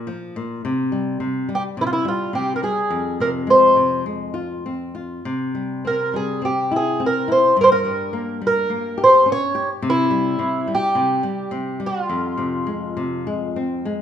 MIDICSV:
0, 0, Header, 1, 3, 480
1, 0, Start_track
1, 0, Key_signature, -4, "minor"
1, 0, Tempo, 564972
1, 554, Time_signature, 4, 2, 24, 8
1, 2957, Tempo, 587084
1, 5357, Tempo, 568182
1, 10157, Tempo, 592885
1, 11712, End_track
2, 0, Start_track
2, 0, Title_t, "Twelve-string acoustic guitar"
2, 0, Program_c, 0, 25
2, 1317, Note_on_c, 0, 67, 71
2, 1375, Note_off_c, 0, 67, 0
2, 1540, Note_on_c, 0, 64, 74
2, 1582, Note_off_c, 0, 64, 0
2, 1585, Note_on_c, 0, 65, 63
2, 1632, Note_off_c, 0, 65, 0
2, 1638, Note_on_c, 0, 64, 71
2, 1757, Note_off_c, 0, 64, 0
2, 1770, Note_on_c, 0, 65, 66
2, 1995, Note_off_c, 0, 65, 0
2, 1998, Note_on_c, 0, 67, 72
2, 2170, Note_off_c, 0, 67, 0
2, 2173, Note_on_c, 0, 70, 56
2, 2230, Note_off_c, 0, 70, 0
2, 2240, Note_on_c, 0, 68, 69
2, 2728, Note_off_c, 0, 68, 0
2, 2731, Note_on_c, 0, 70, 73
2, 2794, Note_off_c, 0, 70, 0
2, 2975, Note_on_c, 0, 72, 76
2, 3404, Note_off_c, 0, 72, 0
2, 4913, Note_on_c, 0, 70, 75
2, 5142, Note_off_c, 0, 70, 0
2, 5150, Note_on_c, 0, 68, 67
2, 5379, Note_off_c, 0, 68, 0
2, 5386, Note_on_c, 0, 67, 73
2, 5620, Note_off_c, 0, 67, 0
2, 5650, Note_on_c, 0, 68, 68
2, 5872, Note_off_c, 0, 68, 0
2, 5904, Note_on_c, 0, 70, 75
2, 6115, Note_off_c, 0, 70, 0
2, 6118, Note_on_c, 0, 72, 75
2, 6322, Note_off_c, 0, 72, 0
2, 6365, Note_on_c, 0, 70, 85
2, 6389, Note_on_c, 0, 72, 72
2, 6400, Note_off_c, 0, 70, 0
2, 6439, Note_off_c, 0, 72, 0
2, 6458, Note_on_c, 0, 70, 82
2, 7073, Note_off_c, 0, 70, 0
2, 7091, Note_on_c, 0, 70, 79
2, 7558, Note_off_c, 0, 70, 0
2, 7571, Note_on_c, 0, 72, 82
2, 7791, Note_off_c, 0, 72, 0
2, 7811, Note_on_c, 0, 73, 89
2, 8120, Note_off_c, 0, 73, 0
2, 8298, Note_on_c, 0, 64, 90
2, 9000, Note_off_c, 0, 64, 0
2, 9015, Note_on_c, 0, 67, 84
2, 9959, Note_on_c, 0, 65, 73
2, 9974, Note_off_c, 0, 67, 0
2, 11582, Note_off_c, 0, 65, 0
2, 11712, End_track
3, 0, Start_track
3, 0, Title_t, "Nylon-string guitar"
3, 0, Program_c, 1, 24
3, 59, Note_on_c, 1, 53, 52
3, 299, Note_off_c, 1, 53, 0
3, 307, Note_on_c, 1, 46, 52
3, 543, Note_off_c, 1, 46, 0
3, 550, Note_on_c, 1, 48, 64
3, 782, Note_on_c, 1, 55, 48
3, 1010, Note_off_c, 1, 48, 0
3, 1020, Note_off_c, 1, 55, 0
3, 1020, Note_on_c, 1, 48, 51
3, 1258, Note_off_c, 1, 48, 0
3, 1263, Note_on_c, 1, 55, 48
3, 1497, Note_off_c, 1, 55, 0
3, 1505, Note_on_c, 1, 48, 50
3, 1737, Note_off_c, 1, 48, 0
3, 1741, Note_on_c, 1, 55, 49
3, 1976, Note_off_c, 1, 55, 0
3, 1981, Note_on_c, 1, 48, 47
3, 2218, Note_off_c, 1, 48, 0
3, 2233, Note_on_c, 1, 55, 46
3, 2466, Note_off_c, 1, 55, 0
3, 2468, Note_on_c, 1, 41, 62
3, 2722, Note_on_c, 1, 48, 43
3, 2948, Note_on_c, 1, 56, 47
3, 2953, Note_off_c, 1, 48, 0
3, 3179, Note_off_c, 1, 56, 0
3, 3187, Note_on_c, 1, 48, 44
3, 3418, Note_off_c, 1, 48, 0
3, 3430, Note_on_c, 1, 56, 45
3, 3658, Note_on_c, 1, 65, 46
3, 3660, Note_off_c, 1, 56, 0
3, 3897, Note_off_c, 1, 65, 0
3, 3919, Note_on_c, 1, 60, 43
3, 4151, Note_off_c, 1, 60, 0
3, 4156, Note_on_c, 1, 65, 41
3, 4362, Note_off_c, 1, 41, 0
3, 4391, Note_off_c, 1, 65, 0
3, 4406, Note_on_c, 1, 48, 57
3, 4646, Note_on_c, 1, 55, 42
3, 4877, Note_off_c, 1, 55, 0
3, 4891, Note_on_c, 1, 60, 44
3, 5118, Note_off_c, 1, 60, 0
3, 5129, Note_on_c, 1, 55, 46
3, 5354, Note_off_c, 1, 55, 0
3, 5358, Note_on_c, 1, 60, 46
3, 5592, Note_off_c, 1, 60, 0
3, 5608, Note_on_c, 1, 64, 47
3, 5837, Note_off_c, 1, 64, 0
3, 5849, Note_on_c, 1, 60, 49
3, 6077, Note_off_c, 1, 60, 0
3, 6086, Note_on_c, 1, 64, 44
3, 6289, Note_off_c, 1, 48, 0
3, 6314, Note_off_c, 1, 64, 0
3, 6328, Note_on_c, 1, 43, 60
3, 6568, Note_on_c, 1, 55, 47
3, 6798, Note_off_c, 1, 55, 0
3, 6805, Note_on_c, 1, 58, 47
3, 7038, Note_off_c, 1, 58, 0
3, 7046, Note_on_c, 1, 55, 50
3, 7277, Note_off_c, 1, 55, 0
3, 7286, Note_on_c, 1, 58, 49
3, 7515, Note_off_c, 1, 58, 0
3, 7519, Note_on_c, 1, 67, 51
3, 7752, Note_off_c, 1, 67, 0
3, 7759, Note_on_c, 1, 61, 51
3, 7990, Note_off_c, 1, 61, 0
3, 8002, Note_on_c, 1, 67, 51
3, 8207, Note_off_c, 1, 43, 0
3, 8231, Note_off_c, 1, 67, 0
3, 8236, Note_on_c, 1, 48, 65
3, 8475, Note_on_c, 1, 55, 50
3, 8701, Note_off_c, 1, 48, 0
3, 8704, Note_off_c, 1, 55, 0
3, 8712, Note_on_c, 1, 48, 54
3, 8942, Note_off_c, 1, 48, 0
3, 8955, Note_on_c, 1, 55, 51
3, 9186, Note_off_c, 1, 55, 0
3, 9189, Note_on_c, 1, 48, 54
3, 9424, Note_off_c, 1, 48, 0
3, 9426, Note_on_c, 1, 55, 54
3, 9662, Note_off_c, 1, 55, 0
3, 9662, Note_on_c, 1, 48, 54
3, 9900, Note_off_c, 1, 48, 0
3, 9903, Note_on_c, 1, 55, 52
3, 10143, Note_off_c, 1, 55, 0
3, 10154, Note_on_c, 1, 41, 64
3, 10381, Note_on_c, 1, 48, 47
3, 10616, Note_on_c, 1, 56, 48
3, 10617, Note_off_c, 1, 48, 0
3, 10856, Note_off_c, 1, 56, 0
3, 10860, Note_on_c, 1, 48, 50
3, 11098, Note_off_c, 1, 48, 0
3, 11104, Note_on_c, 1, 56, 47
3, 11340, Note_off_c, 1, 56, 0
3, 11342, Note_on_c, 1, 60, 45
3, 11579, Note_on_c, 1, 56, 47
3, 11581, Note_off_c, 1, 60, 0
3, 11712, Note_off_c, 1, 41, 0
3, 11712, Note_off_c, 1, 56, 0
3, 11712, End_track
0, 0, End_of_file